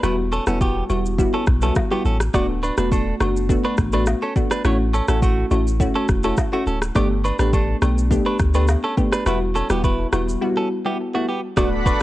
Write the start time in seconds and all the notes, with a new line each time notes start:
0.03 E1 G3 B3 E4 F#4 B4, cross-stick, high agogo, shaker
0.32 C#4 A4, high agogo, shaker
0.47 E1 G3 B3 C#4 E4 F#4 A4, cross-stick, shaker
0.61 B3 G4, kick, high agogo, shaker
0.89 E1 G3 B3 E4 F#4, high agogo, shaker
1.06 shaker
1.18 G3 B3 E4 F#4, kick, shaker
1.34 C#4 A4, high agogo
1.47 B1, kick, cross-stick, shaker
1.62 G3 B3 C#4 E4 F#4 A4, high agogo, shaker
1.75 kick, cross-stick, low woodblock, shaker
1.91 G3 B3 E4 F#4 G4, high agogo
2.05 A1 C#4 A4, shaker
2.20 cross-stick, shaker
2.34 D1 A3 B3 D4 F#4 D5, kick, cross-stick, high agogo, shaker
2.63 D4 B4, high agogo, shaker
2.77 E1 A3 B3 D4 F#4 B4, cross-stick, shaker
2.92 D4 A4, kick, high agogo, shaker
3.20 F#1 A3 B3 D4 F#4, cross-stick, high agogo, shaker
3.37 shaker
3.49 A3 B3 D4 F#4, kick, shaker
3.64 D4 B4, high agogo
3.77 A1, kick, cross-stick, shaker
3.92 A3 B3 D4 F#4 B4, high agogo, shaker
4.06 cross-stick, low woodblock, shaker
4.22 C#4 A4, high agogo
4.36 A3 B3 D4 F#4, kick, shaker
4.51 D4 B4, cross-stick, shaker
4.65 A1 A3 C#4 E4 F#4 C#5, cross-stick, high agogo, shaker
4.93 C#4 A4, high agogo, shaker
5.08 A1 A3 C#4 E4 F#4 A4, cross-stick, shaker
5.22 A3 F#4, kick, high agogo, shaker
5.51 A1 A3 C#4 E4 F#4, high agogo, shaker
5.67 shaker
5.80 A3 C#4 E4 F#4, kick, shaker
5.95 C#4 A4, high agogo
6.08 E1, kick, cross-stick, shaker
6.23 A3 C#4 E4 F#4 A4, high agogo, shaker
6.37 kick, cross-stick, low woodblock, shaker
6.52 A3 C#4 E4 F#4, high agogo
6.67 D1 C#4 A4, shaker
6.82 cross-stick, shaker
6.95 G1 A3 B3 D4 G4 D5, kick, cross-stick, high agogo, shaker
7.24 D4 B4, high agogo, shaker
7.39 A1 A3 B3 D4 G4 B4, cross-stick, shaker
7.53 D4 A4, kick, high agogo, shaker
7.82 B1 A3 B3 D4 G4, cross-stick, high agogo, shaker
7.98 shaker
8.11 A3 B3 D4 G4, kick, shaker
8.26 D4 B4, high agogo
8.39 D2, kick, cross-stick, shaker
8.54 A3 B3 D4 G4 B4, high agogo, shaker
8.68 cross-stick, low woodblock, shaker
8.84 C#4 A4, high agogo
8.97 A3 B3 D4 G4, kick, shaker
9.12 D4 B4, cross-stick, shaker
9.26 E1 G3 B3 E4 F#4 B4, cross-stick, high agogo, shaker
9.55 C#4 A4, high agogo, shaker
9.70 E1 G3 B3 E4 F#4 G4, cross-stick, shaker
9.84 E4 B4, kick, high agogo, shaker
10.12 E1 G3 B3 E4 F#4, cross-stick, high agogo, shaker
10.29 shaker
10.41 G3 B3 E4 F#4
10.57 C#4 A4
10.85 G3 B3 E4 F#4 G4
11.14 G3 A3 B3 E4 F#4
11.29 B3 G4
11.57 D1 A3 B3 D4 F#4 A4 D5 F#5 B5, kick, cross-stick, high agogo, shaker
11.86 D4 B4, kick, high agogo, shaker